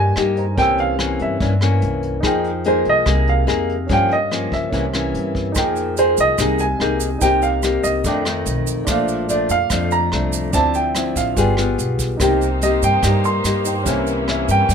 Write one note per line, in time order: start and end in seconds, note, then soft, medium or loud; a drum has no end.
0.00 0.13 G2 medium
0.00 0.55 G2 soft
0.00 0.13 A#3 soft
0.00 0.13 D#4 soft
0.00 0.32 D#4 soft
0.00 0.13 G4 medium
0.00 0.33 A#4 soft
0.00 0.34 C5 soft
0.00 0.55 G#5 medium
0.00 0.35 G6 medium
0.16 0.55 G2 medium
0.16 0.44 A#3 soft
0.16 0.45 D#4 soft
0.16 0.45 G4 medium
0.16 cross-stick medium
0.16 closed hi-hat soft
0.36 0.57 D#4 soft
0.36 0.56 A#4 soft
0.36 0.58 C5 soft
0.36 0.59 A#5 soft
0.36 closed hi-hat soft
0.56 1.16 C2 medium
0.56 1.39 C3 soft
0.56 0.96 E3 medium
0.56 0.96 A#3 soft
0.56 2.19 C#4 soft
0.56 0.96 C#4 medium
0.56 2.20 A#4 soft
0.56 2.21 C5 soft
0.56 0.77 G5 medium
0.56 kick medium
0.56 closed hi-hat soft
0.62 2.22 E6 soft
0.78 1.18 F5 medium
0.78 closed hi-hat soft
0.99 1.37 E3 soft
0.99 1.37 A#3 soft
0.99 1.38 C#4 medium
0.99 cross-stick medium
0.99 closed hi-hat soft
1.19 1.39 G2 medium
1.19 2.00 E5 medium
1.19 closed hi-hat soft
1.40 1.79 G2 medium
1.40 2.22 G2 soft
1.40 1.53 E3 soft
1.40 1.53 A#3 soft
1.40 1.53 C#4 medium
1.40 kick medium
1.40 closed hi-hat soft
1.61 2.21 E3 medium
1.61 2.21 A#3 medium
1.61 2.21 C#4 medium
1.61 cross-stick soft
1.61 closed hi-hat soft
1.82 2.21 C2 medium
1.82 closed hi-hat soft
2.03 closed hi-hat soft
2.20 2.82 F2 medium
2.20 3.04 F3 medium
2.20 2.50 A#3 soft
2.20 3.85 D#4 medium
2.20 2.50 D#4 medium
2.20 3.86 G#4 soft
2.20 2.50 G#4 medium
2.20 kick medium
2.20 cross-stick medium
2.20 closed hi-hat soft
2.25 3.87 A#4 soft
2.25 3.88 G5 medium
2.44 closed hi-hat soft
2.64 3.04 A#3 medium
2.64 3.04 D#4 medium
2.64 3.04 G#4 medium
2.64 2.88 C5 medium
2.64 closed hi-hat soft
2.85 3.05 C2 medium
2.85 closed hi-hat soft
2.89 3.30 D#5 medium
3.06 3.45 C2 loud
3.06 3.87 C3 medium
3.06 3.44 A#3 medium
3.06 3.45 D#4 medium
3.06 3.45 G#4 medium
3.06 kick soft
3.06 cross-stick medium
3.06 closed hi-hat soft
3.27 3.92 F5 medium
3.27 closed hi-hat soft
3.47 3.86 F2 medium
3.47 3.75 A#3 medium
3.47 3.76 D#4 soft
3.47 3.76 G#4 medium
3.47 cross-stick soft
3.47 closed hi-hat soft
3.69 closed hi-hat soft
3.87 4.70 G2 soft
3.87 4.48 G2 medium
3.87 4.16 F3 medium
3.87 4.16 A#3 soft
3.87 4.68 C#4 soft
3.87 4.16 C#4 medium
3.87 4.70 G4 soft
3.87 4.70 A#4 soft
3.87 kick medium
3.87 closed hi-hat soft
3.92 4.72 F5 soft
3.92 4.12 G5 medium
4.11 4.54 D#5 medium
4.11 closed hi-hat soft
4.31 4.69 F3 soft
4.31 4.70 A#3 soft
4.31 4.70 C#4 soft
4.31 cross-stick medium
4.31 closed hi-hat soft
4.52 4.71 C#3 medium
4.52 5.32 E5 medium
4.52 kick soft
4.52 closed hi-hat soft
4.69 5.11 C2 medium
4.69 5.54 C3 soft
4.69 4.85 E3 soft
4.69 5.52 C#4 soft
4.69 5.53 A#4 soft
4.69 5.54 C5 soft
4.69 kick medium
4.69 closed hi-hat soft
4.73 4.85 A#3 medium
4.73 4.85 C#4 medium
4.73 5.55 E5 soft
4.94 5.52 E3 medium
4.94 5.53 A#3 medium
4.94 5.53 C#4 medium
4.94 cross-stick soft
4.94 closed hi-hat soft
5.14 5.53 G2 medium
5.14 closed hi-hat soft
5.35 kick soft
5.35 closed hi-hat soft
5.52 6.14 F2 medium
5.52 6.76 D#4 medium
5.52 6.77 G#4 soft
5.52 kick medium
5.52 shaker medium
5.56 6.37 F3 soft
5.56 5.94 A#3 soft
5.56 5.94 D#4 soft
5.56 5.95 G#4 medium
5.56 6.78 A#4 soft
5.56 6.79 G5 medium
5.56 cross-stick medium
5.56 closed hi-hat soft
5.76 closed hi-hat soft
5.76 shaker soft
5.97 6.36 A#3 soft
5.97 6.36 D#4 soft
5.97 6.36 G#4 medium
5.97 6.17 C5 medium
5.97 closed hi-hat soft
5.97 shaker soft
6.17 6.37 C2 medium
6.17 6.62 D#5 medium
6.17 closed hi-hat soft
6.17 shaker soft
6.38 6.77 C2 medium
6.38 7.20 C3 soft
6.38 6.66 A#3 soft
6.38 6.66 D#4 medium
6.38 6.66 G#4 soft
6.38 kick soft
6.38 cross-stick medium
6.38 closed hi-hat soft
6.38 shaker soft
6.59 7.24 G#5 medium
6.59 closed hi-hat soft
6.59 shaker soft
6.79 7.18 C2 medium
6.79 7.09 A#3 medium
6.79 7.17 D#4 soft
6.79 7.09 D#4 medium
6.79 7.21 G#4 soft
6.79 7.09 G#4 medium
6.79 7.19 A#4 soft
6.79 7.22 G6 soft
6.79 cross-stick soft
6.79 closed hi-hat soft
7.00 closed hi-hat soft
7.00 shaker medium
7.19 7.80 C2 medium
7.19 8.03 C3 soft
7.19 7.60 A#3 soft
7.19 8.01 D#4 soft
7.19 8.03 A#4 soft
7.19 8.04 C5 soft
7.19 7.43 G5 medium
7.19 kick medium
7.19 closed hi-hat soft
7.19 shaker medium
7.23 7.60 D#4 medium
7.23 7.60 G4 soft
7.23 8.04 G5 soft
7.42 7.85 F5 medium
7.42 closed hi-hat soft
7.42 shaker soft
7.63 8.02 A#3 soft
7.63 8.02 D#4 medium
7.63 8.02 G4 medium
7.63 cross-stick soft
7.63 closed hi-hat soft
7.63 shaker soft
7.83 8.03 C2 medium
7.83 8.63 D#5 medium
7.83 closed hi-hat soft
7.83 shaker medium
8.04 8.43 F2 medium
8.04 8.86 F2 soft
8.04 8.22 D#3 medium
8.04 8.22 A3 soft
8.04 8.23 D4 medium
8.04 8.86 A4 soft
8.04 8.88 G5 medium
8.04 8.87 D6 soft
8.04 kick soft
8.04 closed hi-hat soft
8.04 shaker medium
8.25 8.85 D#3 medium
8.25 8.85 A3 medium
8.25 cross-stick medium
8.25 closed hi-hat soft
8.25 shaker soft
8.46 8.85 B1 medium
8.46 closed hi-hat soft
8.46 shaker medium
8.66 closed hi-hat soft
8.66 shaker medium
8.85 9.46 A#1 medium
8.85 9.69 A#2 soft
8.85 9.26 F3 soft
8.85 9.26 A3 medium
8.85 10.49 D4 medium
8.85 9.26 D4 soft
8.85 10.50 F4 medium
8.85 kick medium
8.85 cross-stick medium
8.85 closed hi-hat soft
8.85 shaker medium
8.89 10.51 A#3 medium
8.89 10.52 F5 medium
9.08 closed hi-hat soft
9.08 shaker soft
9.29 9.56 F3 medium
9.29 9.56 A3 soft
9.29 9.56 D4 medium
9.29 9.51 D5 medium
9.29 closed hi-hat soft
9.29 shaker medium
9.49 9.69 F2 medium
9.49 9.89 F5 loud
9.49 closed hi-hat soft
9.49 shaker medium
9.70 10.09 F2 medium
9.70 10.52 F2 medium
9.70 10.09 F3 medium
9.70 10.09 A3 medium
9.70 10.09 D4 medium
9.70 kick medium
9.70 cross-stick medium
9.70 closed hi-hat soft
9.70 shaker medium
9.91 10.56 A#5 medium
9.91 closed hi-hat soft
9.91 shaker soft
10.12 10.51 C2 medium
10.12 10.52 F3 soft
10.12 10.53 A3 medium
10.12 10.53 D4 medium
10.12 cross-stick soft
10.12 closed hi-hat soft
10.32 closed hi-hat soft
10.32 shaker medium
10.51 11.12 D2 medium
10.51 11.35 D3 soft
10.51 10.92 F3 soft
10.51 10.92 C4 medium
10.51 11.34 D4 soft
10.51 10.92 E4 soft
10.51 10.75 A5 medium
10.51 kick medium
10.51 closed hi-hat soft
10.51 shaker medium
10.55 11.36 C5 soft
10.55 11.37 E5 soft
10.74 11.18 G5 medium
10.74 closed hi-hat soft
10.74 shaker soft
10.95 11.33 F3 medium
10.95 11.34 C4 soft
10.95 11.34 E4 medium
10.95 cross-stick medium
10.95 closed hi-hat soft
10.95 shaker soft
11.16 11.35 A1 medium
11.16 11.96 F5 medium
11.16 kick soft
11.16 closed hi-hat soft
11.16 shaker soft
11.34 11.75 G1 medium
11.34 12.18 G3 soft
11.34 11.55 B3 soft
11.34 12.17 F4 soft
11.34 11.55 F4 soft
11.34 12.18 G#4 soft
11.34 kick medium
11.34 closed hi-hat soft
11.34 shaker soft
11.38 11.55 G#4 medium
11.38 12.19 B4 soft
11.38 12.20 G5 soft
11.57 12.17 B3 medium
11.57 12.17 F4 medium
11.57 12.17 G#4 medium
11.57 cross-stick soft
11.57 closed hi-hat soft
11.57 shaker soft
11.78 12.17 B1 medium
11.78 closed hi-hat soft
11.78 shaker soft
11.99 kick soft
11.99 closed hi-hat soft
11.99 shaker medium
12.17 12.78 C2 medium
12.17 13.01 C3 soft
12.17 12.47 A#3 soft
12.17 14.74 A#3 medium
12.17 13.61 D#4 soft
12.17 12.47 D#4 soft
12.17 13.62 A#4 soft
12.17 13.85 C5 medium
12.17 kick medium
12.17 cross-stick medium
12.17 closed hi-hat soft
12.17 shaker medium
12.21 13.85 D#4 medium
12.21 12.47 G4 medium
12.21 13.63 C5 soft
12.21 13.64 G5 medium
12.41 closed hi-hat soft
12.41 shaker soft
12.61 13.00 A#3 soft
12.61 13.00 D#4 soft
12.61 13.00 G4 medium
12.61 12.84 D#5 medium
12.61 closed hi-hat soft
12.61 shaker soft
12.82 13.02 G2 medium
12.82 13.22 G5 medium
12.82 closed hi-hat soft
12.82 shaker medium
13.03 13.42 G2 medium
13.03 13.84 G2 soft
13.03 13.41 A#3 medium
13.03 13.42 D#4 medium
13.03 13.42 G4 medium
13.03 kick medium
13.03 cross-stick medium
13.03 closed hi-hat soft
13.03 shaker medium
13.24 13.83 C6 medium
13.24 closed hi-hat soft
13.24 shaker soft
13.44 13.83 G2 medium
13.44 13.73 A#3 soft
13.44 13.73 D#4 medium
13.44 13.74 G4 medium
13.44 cross-stick soft
13.44 closed hi-hat soft
13.44 shaker soft
13.64 13.86 D#4 soft
13.64 13.83 A#4 soft
13.64 13.85 C5 soft
13.64 13.87 G5 soft
13.64 closed hi-hat soft
13.64 shaker medium
13.83 14.44 C2 medium
13.83 14.67 C3 medium
13.83 14.25 E3 soft
13.83 14.25 A#3 medium
13.83 14.74 C#4 medium
13.83 14.74 A#4 soft
13.83 14.74 C5 soft
13.83 kick medium
13.83 closed hi-hat soft
13.83 shaker medium
13.87 14.25 C#4 soft
13.87 14.74 C#4 medium
13.87 14.74 E4 medium
13.87 14.74 E5 medium
14.07 closed hi-hat soft
14.07 shaker soft
14.28 14.69 E3 soft
14.28 14.69 A#3 soft
14.28 14.69 C#4 medium
14.28 14.50 E5 medium
14.28 cross-stick medium
14.28 closed hi-hat soft
14.48 14.68 G2 medium
14.48 14.74 G5 medium
14.48 closed hi-hat soft
14.48 shaker medium
14.69 14.74 G2 medium
14.69 14.74 G2 soft
14.69 kick medium
14.69 closed hi-hat soft
14.69 shaker soft